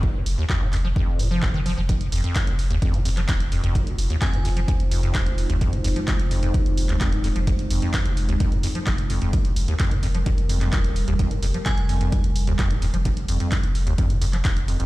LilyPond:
<<
  \new Staff \with { instrumentName = "Synth bell" } { \time 4/4 \key f \minor \tempo 4 = 129 r1 | r1 | r4 aes''4 r2 | r1 |
r1 | r1 | r4 aes''4 r2 | r1 | }
  \new Staff \with { instrumentName = "Analog synth pad" } { \time 4/4 \key f \minor << { r1 | <f' c''>1~ | <f' c''>1~ | <f' c''>1~ |
<f' c''>1 | <g bes'>1~ | <g bes'>1~ | <g bes'>1 | } \\ { r1 | <aes ees'>1~ | <aes ees'>1~ | <aes ees'>1~ |
<aes ees'>1~ | <aes ees'>1~ | <aes ees'>1~ | <aes ees'>1 | } >> }
  \new Staff \with { instrumentName = "Acid bass" } { \clef bass \time 4/4 \key f \minor f,,16 f,16 r16 ees,16 f,16 bes,16 f,16 f16 f,8 bes,16 f16 f,16 ees16 f16 f16 | f,16 r16 f,16 f,16 f,,16 f,16 r16 ees,16 f,16 bes,16 f,16 f16 f,16 r16 f,16 f,16 | f,,16 f,16 r16 ees,16 f,16 bes,16 f,16 f16 f,16 r16 f,16 f,16 f,,16 f,16 r16 ees,16 | f,16 bes,16 f,16 f16 f,16 r16 f,16 f,16 f,,16 f,16 r16 ees,16 f,16 bes,16 f,16 f16 |
f,16 r16 f,16 f,16 f,,16 f,16 r16 ees,16 f,16 bes,16 f,16 f16 f,16 r16 f,16 f,16 | f,,16 f,16 r16 ees,16 f,16 bes,16 f,16 f16 f,16 r16 f,16 f,16 f,,16 f,16 r16 ees,16 | f,16 bes,16 f,16 f16 f,16 r16 f,16 f,16 f,,16 f,16 r16 ees,16 f,16 bes,16 f,16 f16 | f,16 r16 f,16 f,16 f,,16 f,16 r16 ees,16 f,16 bes,16 f,16 f16 f,16 r16 f,16 f,16 | }
  \new Staff \with { instrumentName = "Sub bass" } { \clef bass \time 4/4 \key f \minor f,,8 f,,16 r8 f,,8. r16 f,,8. f,,8. f,,16~ | f,,8 f,,16 r8 f,,8. r16 f,,8. ees,,8. f,,16~ | f,,8 f,,16 r8 f,,8. r16 f,,8. ees,,8. f,,16~ | f,,8 f,,16 r8 f,,8. r16 f,,8. ees,,8. f,,16~ |
f,,8 f,,16 r8 f,,8. r16 f,,16 r8 f,,8. ees,,16 | r8 f,,16 r8 f,,8. r16 f,,8. ees,,8. f,,16~ | f,,8 f,,16 r8 f,,8. r16 f,,8. ees,,8. f,,16~ | f,,8 f,,16 r8 f,,8. r16 f,,8. ees,,8. f,,16 | }
  \new DrumStaff \with { instrumentName = "Drums" } \drummode { \time 4/4 bd8 hho8 <hc bd>8 <hc hho>8 bd8 hho8 <hc bd>8 hho8 | <hh bd>16 hh16 hho16 hh16 <hc hh bd>16 hh16 hho16 hh16 <hh bd>16 hh16 hho16 <hc hh>16 <hc hh bd>16 hh16 hho16 hh16 | <hh bd>16 hh16 hho16 hh16 <hc hh bd>16 hh16 hho16 hh16 <hh bd>16 hh16 hho16 hh16 <hc hh bd>16 hh16 hho16 hh16 | <hh bd>16 hh16 hho16 hh16 <hc hh bd>16 hh16 hho16 hh16 <hh bd>16 hh16 hho16 <hc hh>16 <hc hh bd>16 hh16 hho16 hh16 |
<hh bd>16 hh16 hho16 hh16 <hc hh bd>16 hh16 hho16 hh16 <hh bd>16 hh16 hho16 hh16 <hc hh bd>16 hh16 hho16 hh16 | <hh bd>16 hh16 hho16 hh16 <hc hh bd>16 hh16 hho16 hh16 <hh bd>16 hh16 hho16 <hc hh>16 <hc hh bd>16 hh16 hho16 hh16 | <hh bd>16 hh16 hho16 hh16 <hc hh bd>16 hh16 hho16 hh16 <hh bd>16 hh16 hho16 hh16 <hc hh bd>16 hh16 hho16 hh16 | <hh bd>16 hh16 hho16 hh16 <hc hh bd>16 hh16 hho16 hh16 <hh bd>16 hh16 hho16 <hc hh>16 <hc hh bd>16 hh16 hho16 hh16 | }
>>